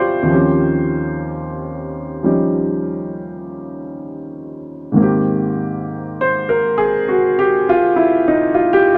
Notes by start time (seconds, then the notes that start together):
Already playing: C2 C3 D3 G3 C4 D4 E4 F4 G4 A4 C5 C#5 D5
0.23 D#2 D#3 F3
0.29 C4 C#4
0.33 G4
2.23 F3 G3 C#4 D#4 G4
4.92 G#2 D#3
4.96 A#3 C4
5.02 G4
6.21 C5
6.49 A#4
6.78 G#4
7.09 F#4
7.39 G4
7.69 F4
7.96 E4
8.28 D#4
8.54 F4
8.73 G4
8.95 F4